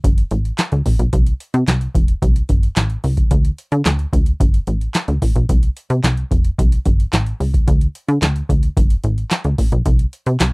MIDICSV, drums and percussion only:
0, 0, Header, 1, 2, 480
1, 0, Start_track
1, 0, Tempo, 545455
1, 994, Time_signature, 4, 2, 24, 8
1, 9268, End_track
2, 0, Start_track
2, 0, Title_t, "Drums"
2, 35, Note_on_c, 9, 36, 113
2, 38, Note_on_c, 9, 42, 94
2, 123, Note_off_c, 9, 36, 0
2, 126, Note_off_c, 9, 42, 0
2, 156, Note_on_c, 9, 42, 53
2, 244, Note_off_c, 9, 42, 0
2, 271, Note_on_c, 9, 42, 68
2, 359, Note_off_c, 9, 42, 0
2, 397, Note_on_c, 9, 42, 42
2, 485, Note_off_c, 9, 42, 0
2, 512, Note_on_c, 9, 42, 76
2, 515, Note_on_c, 9, 39, 87
2, 518, Note_on_c, 9, 38, 109
2, 600, Note_off_c, 9, 42, 0
2, 603, Note_off_c, 9, 39, 0
2, 606, Note_off_c, 9, 38, 0
2, 632, Note_on_c, 9, 42, 49
2, 720, Note_off_c, 9, 42, 0
2, 754, Note_on_c, 9, 36, 89
2, 754, Note_on_c, 9, 46, 60
2, 842, Note_off_c, 9, 36, 0
2, 842, Note_off_c, 9, 46, 0
2, 874, Note_on_c, 9, 42, 52
2, 962, Note_off_c, 9, 42, 0
2, 993, Note_on_c, 9, 42, 90
2, 994, Note_on_c, 9, 36, 112
2, 1081, Note_off_c, 9, 42, 0
2, 1082, Note_off_c, 9, 36, 0
2, 1113, Note_on_c, 9, 42, 50
2, 1201, Note_off_c, 9, 42, 0
2, 1235, Note_on_c, 9, 42, 74
2, 1323, Note_off_c, 9, 42, 0
2, 1355, Note_on_c, 9, 42, 58
2, 1443, Note_off_c, 9, 42, 0
2, 1475, Note_on_c, 9, 42, 89
2, 1478, Note_on_c, 9, 39, 85
2, 1481, Note_on_c, 9, 38, 108
2, 1563, Note_off_c, 9, 42, 0
2, 1566, Note_off_c, 9, 39, 0
2, 1569, Note_off_c, 9, 38, 0
2, 1594, Note_on_c, 9, 42, 53
2, 1682, Note_off_c, 9, 42, 0
2, 1713, Note_on_c, 9, 36, 104
2, 1718, Note_on_c, 9, 42, 70
2, 1801, Note_off_c, 9, 36, 0
2, 1806, Note_off_c, 9, 42, 0
2, 1832, Note_on_c, 9, 42, 52
2, 1920, Note_off_c, 9, 42, 0
2, 1954, Note_on_c, 9, 36, 111
2, 1958, Note_on_c, 9, 42, 91
2, 2042, Note_off_c, 9, 36, 0
2, 2046, Note_off_c, 9, 42, 0
2, 2076, Note_on_c, 9, 42, 52
2, 2164, Note_off_c, 9, 42, 0
2, 2191, Note_on_c, 9, 42, 71
2, 2193, Note_on_c, 9, 36, 98
2, 2279, Note_off_c, 9, 42, 0
2, 2281, Note_off_c, 9, 36, 0
2, 2316, Note_on_c, 9, 42, 45
2, 2404, Note_off_c, 9, 42, 0
2, 2430, Note_on_c, 9, 42, 78
2, 2433, Note_on_c, 9, 39, 83
2, 2436, Note_on_c, 9, 38, 115
2, 2518, Note_off_c, 9, 42, 0
2, 2521, Note_off_c, 9, 39, 0
2, 2524, Note_off_c, 9, 38, 0
2, 2550, Note_on_c, 9, 42, 47
2, 2638, Note_off_c, 9, 42, 0
2, 2673, Note_on_c, 9, 46, 65
2, 2761, Note_off_c, 9, 46, 0
2, 2792, Note_on_c, 9, 42, 52
2, 2793, Note_on_c, 9, 36, 92
2, 2880, Note_off_c, 9, 42, 0
2, 2881, Note_off_c, 9, 36, 0
2, 2911, Note_on_c, 9, 42, 97
2, 2913, Note_on_c, 9, 36, 106
2, 2999, Note_off_c, 9, 42, 0
2, 3001, Note_off_c, 9, 36, 0
2, 3034, Note_on_c, 9, 42, 51
2, 3122, Note_off_c, 9, 42, 0
2, 3154, Note_on_c, 9, 42, 78
2, 3242, Note_off_c, 9, 42, 0
2, 3272, Note_on_c, 9, 42, 59
2, 3360, Note_off_c, 9, 42, 0
2, 3391, Note_on_c, 9, 42, 91
2, 3394, Note_on_c, 9, 39, 95
2, 3397, Note_on_c, 9, 38, 109
2, 3479, Note_off_c, 9, 42, 0
2, 3482, Note_off_c, 9, 39, 0
2, 3485, Note_off_c, 9, 38, 0
2, 3511, Note_on_c, 9, 42, 49
2, 3599, Note_off_c, 9, 42, 0
2, 3632, Note_on_c, 9, 36, 101
2, 3637, Note_on_c, 9, 42, 72
2, 3720, Note_off_c, 9, 36, 0
2, 3725, Note_off_c, 9, 42, 0
2, 3751, Note_on_c, 9, 42, 50
2, 3839, Note_off_c, 9, 42, 0
2, 3873, Note_on_c, 9, 36, 117
2, 3877, Note_on_c, 9, 42, 97
2, 3961, Note_off_c, 9, 36, 0
2, 3965, Note_off_c, 9, 42, 0
2, 3995, Note_on_c, 9, 42, 53
2, 4083, Note_off_c, 9, 42, 0
2, 4111, Note_on_c, 9, 42, 73
2, 4199, Note_off_c, 9, 42, 0
2, 4236, Note_on_c, 9, 42, 46
2, 4324, Note_off_c, 9, 42, 0
2, 4350, Note_on_c, 9, 42, 76
2, 4353, Note_on_c, 9, 39, 81
2, 4356, Note_on_c, 9, 38, 112
2, 4438, Note_off_c, 9, 42, 0
2, 4441, Note_off_c, 9, 39, 0
2, 4444, Note_off_c, 9, 38, 0
2, 4470, Note_on_c, 9, 42, 47
2, 4558, Note_off_c, 9, 42, 0
2, 4593, Note_on_c, 9, 36, 88
2, 4593, Note_on_c, 9, 46, 58
2, 4681, Note_off_c, 9, 36, 0
2, 4681, Note_off_c, 9, 46, 0
2, 4714, Note_on_c, 9, 42, 47
2, 4802, Note_off_c, 9, 42, 0
2, 4833, Note_on_c, 9, 36, 112
2, 4833, Note_on_c, 9, 42, 93
2, 4921, Note_off_c, 9, 36, 0
2, 4921, Note_off_c, 9, 42, 0
2, 4953, Note_on_c, 9, 42, 50
2, 5041, Note_off_c, 9, 42, 0
2, 5074, Note_on_c, 9, 42, 78
2, 5162, Note_off_c, 9, 42, 0
2, 5192, Note_on_c, 9, 42, 58
2, 5280, Note_off_c, 9, 42, 0
2, 5312, Note_on_c, 9, 42, 83
2, 5316, Note_on_c, 9, 39, 88
2, 5318, Note_on_c, 9, 38, 106
2, 5400, Note_off_c, 9, 42, 0
2, 5404, Note_off_c, 9, 39, 0
2, 5406, Note_off_c, 9, 38, 0
2, 5433, Note_on_c, 9, 42, 47
2, 5521, Note_off_c, 9, 42, 0
2, 5552, Note_on_c, 9, 36, 101
2, 5558, Note_on_c, 9, 42, 68
2, 5640, Note_off_c, 9, 36, 0
2, 5646, Note_off_c, 9, 42, 0
2, 5672, Note_on_c, 9, 42, 49
2, 5760, Note_off_c, 9, 42, 0
2, 5794, Note_on_c, 9, 36, 116
2, 5799, Note_on_c, 9, 42, 94
2, 5882, Note_off_c, 9, 36, 0
2, 5887, Note_off_c, 9, 42, 0
2, 5916, Note_on_c, 9, 42, 52
2, 6004, Note_off_c, 9, 42, 0
2, 6032, Note_on_c, 9, 42, 74
2, 6033, Note_on_c, 9, 36, 98
2, 6120, Note_off_c, 9, 42, 0
2, 6121, Note_off_c, 9, 36, 0
2, 6159, Note_on_c, 9, 42, 43
2, 6247, Note_off_c, 9, 42, 0
2, 6273, Note_on_c, 9, 42, 77
2, 6276, Note_on_c, 9, 39, 87
2, 6279, Note_on_c, 9, 38, 110
2, 6361, Note_off_c, 9, 42, 0
2, 6364, Note_off_c, 9, 39, 0
2, 6367, Note_off_c, 9, 38, 0
2, 6393, Note_on_c, 9, 42, 50
2, 6481, Note_off_c, 9, 42, 0
2, 6517, Note_on_c, 9, 46, 61
2, 6605, Note_off_c, 9, 46, 0
2, 6635, Note_on_c, 9, 36, 89
2, 6637, Note_on_c, 9, 42, 50
2, 6723, Note_off_c, 9, 36, 0
2, 6725, Note_off_c, 9, 42, 0
2, 6755, Note_on_c, 9, 36, 106
2, 6755, Note_on_c, 9, 42, 85
2, 6843, Note_off_c, 9, 36, 0
2, 6843, Note_off_c, 9, 42, 0
2, 6876, Note_on_c, 9, 42, 48
2, 6964, Note_off_c, 9, 42, 0
2, 6997, Note_on_c, 9, 42, 73
2, 7085, Note_off_c, 9, 42, 0
2, 7115, Note_on_c, 9, 42, 58
2, 7203, Note_off_c, 9, 42, 0
2, 7234, Note_on_c, 9, 42, 86
2, 7237, Note_on_c, 9, 39, 95
2, 7240, Note_on_c, 9, 38, 118
2, 7322, Note_off_c, 9, 42, 0
2, 7325, Note_off_c, 9, 39, 0
2, 7328, Note_off_c, 9, 38, 0
2, 7354, Note_on_c, 9, 42, 51
2, 7442, Note_off_c, 9, 42, 0
2, 7473, Note_on_c, 9, 36, 97
2, 7479, Note_on_c, 9, 42, 65
2, 7561, Note_off_c, 9, 36, 0
2, 7567, Note_off_c, 9, 42, 0
2, 7593, Note_on_c, 9, 42, 49
2, 7681, Note_off_c, 9, 42, 0
2, 7715, Note_on_c, 9, 36, 118
2, 7718, Note_on_c, 9, 42, 96
2, 7803, Note_off_c, 9, 36, 0
2, 7806, Note_off_c, 9, 42, 0
2, 7835, Note_on_c, 9, 42, 54
2, 7923, Note_off_c, 9, 42, 0
2, 7951, Note_on_c, 9, 42, 70
2, 8039, Note_off_c, 9, 42, 0
2, 8077, Note_on_c, 9, 42, 47
2, 8165, Note_off_c, 9, 42, 0
2, 8191, Note_on_c, 9, 42, 76
2, 8194, Note_on_c, 9, 39, 85
2, 8197, Note_on_c, 9, 38, 112
2, 8279, Note_off_c, 9, 42, 0
2, 8282, Note_off_c, 9, 39, 0
2, 8285, Note_off_c, 9, 38, 0
2, 8310, Note_on_c, 9, 42, 47
2, 8398, Note_off_c, 9, 42, 0
2, 8434, Note_on_c, 9, 36, 92
2, 8434, Note_on_c, 9, 46, 61
2, 8522, Note_off_c, 9, 36, 0
2, 8522, Note_off_c, 9, 46, 0
2, 8554, Note_on_c, 9, 42, 51
2, 8642, Note_off_c, 9, 42, 0
2, 8673, Note_on_c, 9, 42, 85
2, 8674, Note_on_c, 9, 36, 114
2, 8761, Note_off_c, 9, 42, 0
2, 8762, Note_off_c, 9, 36, 0
2, 8793, Note_on_c, 9, 42, 51
2, 8881, Note_off_c, 9, 42, 0
2, 8915, Note_on_c, 9, 42, 72
2, 9003, Note_off_c, 9, 42, 0
2, 9032, Note_on_c, 9, 42, 59
2, 9120, Note_off_c, 9, 42, 0
2, 9151, Note_on_c, 9, 42, 87
2, 9155, Note_on_c, 9, 39, 89
2, 9157, Note_on_c, 9, 38, 114
2, 9239, Note_off_c, 9, 42, 0
2, 9243, Note_off_c, 9, 39, 0
2, 9245, Note_off_c, 9, 38, 0
2, 9268, End_track
0, 0, End_of_file